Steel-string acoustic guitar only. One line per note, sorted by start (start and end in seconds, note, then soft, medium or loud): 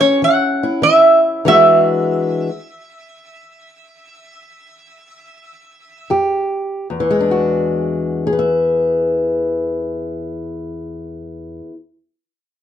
0.00 0.18 E3 medium
0.00 1.42 C#4 medium
0.00 0.63 E4 medium
0.00 1.42 G4 medium
0.22 0.79 E3 medium
0.63 1.47 E4 medium
0.82 1.39 E3 medium
1.45 1.97 E2 medium
1.45 2.49 E3 medium
1.45 2.49 G#3 medium
1.45 2.49 D4 medium
1.45 2.49 F#4 medium
6.10 6.84 F2 medium
6.10 6.87 G4 medium
6.90 11.60 E2 medium
7.00 11.70 E3 medium
7.11 8.26 G#3 medium
7.21 8.32 D4 medium
7.31 8.38 F#4 medium
8.27 11.70 G#4 medium
8.33 11.73 B4 medium
8.39 11.76 E5 medium